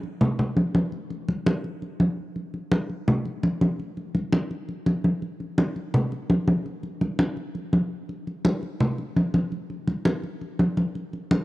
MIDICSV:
0, 0, Header, 1, 2, 480
1, 0, Start_track
1, 0, Tempo, 358209
1, 1241, Time_signature, 4, 2, 24, 8
1, 15336, End_track
2, 0, Start_track
2, 0, Title_t, "Drums"
2, 45, Note_on_c, 9, 63, 33
2, 179, Note_off_c, 9, 63, 0
2, 280, Note_on_c, 9, 63, 35
2, 280, Note_on_c, 9, 64, 84
2, 414, Note_off_c, 9, 63, 0
2, 414, Note_off_c, 9, 64, 0
2, 523, Note_on_c, 9, 63, 34
2, 523, Note_on_c, 9, 64, 65
2, 657, Note_off_c, 9, 63, 0
2, 657, Note_off_c, 9, 64, 0
2, 758, Note_on_c, 9, 63, 79
2, 892, Note_off_c, 9, 63, 0
2, 1001, Note_on_c, 9, 63, 93
2, 1135, Note_off_c, 9, 63, 0
2, 1235, Note_on_c, 9, 63, 34
2, 1369, Note_off_c, 9, 63, 0
2, 1479, Note_on_c, 9, 63, 35
2, 1613, Note_off_c, 9, 63, 0
2, 1722, Note_on_c, 9, 63, 59
2, 1856, Note_off_c, 9, 63, 0
2, 1962, Note_on_c, 9, 63, 92
2, 2096, Note_off_c, 9, 63, 0
2, 2201, Note_on_c, 9, 63, 36
2, 2335, Note_off_c, 9, 63, 0
2, 2441, Note_on_c, 9, 63, 37
2, 2575, Note_off_c, 9, 63, 0
2, 2678, Note_on_c, 9, 63, 91
2, 2812, Note_off_c, 9, 63, 0
2, 3161, Note_on_c, 9, 63, 32
2, 3295, Note_off_c, 9, 63, 0
2, 3402, Note_on_c, 9, 63, 35
2, 3536, Note_off_c, 9, 63, 0
2, 3639, Note_on_c, 9, 63, 93
2, 3773, Note_off_c, 9, 63, 0
2, 3881, Note_on_c, 9, 63, 34
2, 4015, Note_off_c, 9, 63, 0
2, 4125, Note_on_c, 9, 63, 36
2, 4125, Note_on_c, 9, 64, 88
2, 4259, Note_off_c, 9, 63, 0
2, 4259, Note_off_c, 9, 64, 0
2, 4361, Note_on_c, 9, 63, 34
2, 4495, Note_off_c, 9, 63, 0
2, 4601, Note_on_c, 9, 63, 88
2, 4735, Note_off_c, 9, 63, 0
2, 4842, Note_on_c, 9, 63, 88
2, 4976, Note_off_c, 9, 63, 0
2, 5084, Note_on_c, 9, 63, 37
2, 5218, Note_off_c, 9, 63, 0
2, 5321, Note_on_c, 9, 63, 32
2, 5455, Note_off_c, 9, 63, 0
2, 5557, Note_on_c, 9, 63, 58
2, 5691, Note_off_c, 9, 63, 0
2, 5796, Note_on_c, 9, 63, 91
2, 5930, Note_off_c, 9, 63, 0
2, 6040, Note_on_c, 9, 63, 32
2, 6174, Note_off_c, 9, 63, 0
2, 6280, Note_on_c, 9, 63, 36
2, 6414, Note_off_c, 9, 63, 0
2, 6517, Note_on_c, 9, 63, 82
2, 6651, Note_off_c, 9, 63, 0
2, 6758, Note_on_c, 9, 63, 76
2, 6892, Note_off_c, 9, 63, 0
2, 6996, Note_on_c, 9, 63, 34
2, 7130, Note_off_c, 9, 63, 0
2, 7236, Note_on_c, 9, 63, 35
2, 7370, Note_off_c, 9, 63, 0
2, 7476, Note_on_c, 9, 63, 89
2, 7610, Note_off_c, 9, 63, 0
2, 7719, Note_on_c, 9, 63, 38
2, 7853, Note_off_c, 9, 63, 0
2, 7960, Note_on_c, 9, 63, 33
2, 7960, Note_on_c, 9, 64, 84
2, 8094, Note_off_c, 9, 63, 0
2, 8094, Note_off_c, 9, 64, 0
2, 8200, Note_on_c, 9, 63, 34
2, 8334, Note_off_c, 9, 63, 0
2, 8438, Note_on_c, 9, 63, 88
2, 8572, Note_off_c, 9, 63, 0
2, 8678, Note_on_c, 9, 63, 91
2, 8812, Note_off_c, 9, 63, 0
2, 8921, Note_on_c, 9, 63, 34
2, 9055, Note_off_c, 9, 63, 0
2, 9156, Note_on_c, 9, 63, 34
2, 9290, Note_off_c, 9, 63, 0
2, 9396, Note_on_c, 9, 63, 61
2, 9530, Note_off_c, 9, 63, 0
2, 9633, Note_on_c, 9, 63, 100
2, 9767, Note_off_c, 9, 63, 0
2, 9874, Note_on_c, 9, 63, 35
2, 10008, Note_off_c, 9, 63, 0
2, 10115, Note_on_c, 9, 63, 35
2, 10249, Note_off_c, 9, 63, 0
2, 10356, Note_on_c, 9, 63, 91
2, 10490, Note_off_c, 9, 63, 0
2, 10841, Note_on_c, 9, 63, 33
2, 10975, Note_off_c, 9, 63, 0
2, 11084, Note_on_c, 9, 63, 34
2, 11218, Note_off_c, 9, 63, 0
2, 11319, Note_on_c, 9, 63, 100
2, 11453, Note_off_c, 9, 63, 0
2, 11560, Note_on_c, 9, 63, 37
2, 11694, Note_off_c, 9, 63, 0
2, 11797, Note_on_c, 9, 63, 35
2, 11797, Note_on_c, 9, 64, 81
2, 11931, Note_off_c, 9, 63, 0
2, 11931, Note_off_c, 9, 64, 0
2, 12038, Note_on_c, 9, 63, 36
2, 12172, Note_off_c, 9, 63, 0
2, 12280, Note_on_c, 9, 63, 87
2, 12414, Note_off_c, 9, 63, 0
2, 12516, Note_on_c, 9, 63, 92
2, 12650, Note_off_c, 9, 63, 0
2, 12755, Note_on_c, 9, 63, 37
2, 12889, Note_off_c, 9, 63, 0
2, 12996, Note_on_c, 9, 63, 35
2, 13130, Note_off_c, 9, 63, 0
2, 13232, Note_on_c, 9, 63, 60
2, 13366, Note_off_c, 9, 63, 0
2, 13470, Note_on_c, 9, 63, 93
2, 13604, Note_off_c, 9, 63, 0
2, 13714, Note_on_c, 9, 63, 33
2, 13848, Note_off_c, 9, 63, 0
2, 13955, Note_on_c, 9, 63, 33
2, 14089, Note_off_c, 9, 63, 0
2, 14194, Note_on_c, 9, 63, 87
2, 14328, Note_off_c, 9, 63, 0
2, 14434, Note_on_c, 9, 63, 74
2, 14568, Note_off_c, 9, 63, 0
2, 14676, Note_on_c, 9, 63, 37
2, 14810, Note_off_c, 9, 63, 0
2, 14917, Note_on_c, 9, 63, 33
2, 15051, Note_off_c, 9, 63, 0
2, 15155, Note_on_c, 9, 63, 93
2, 15289, Note_off_c, 9, 63, 0
2, 15336, End_track
0, 0, End_of_file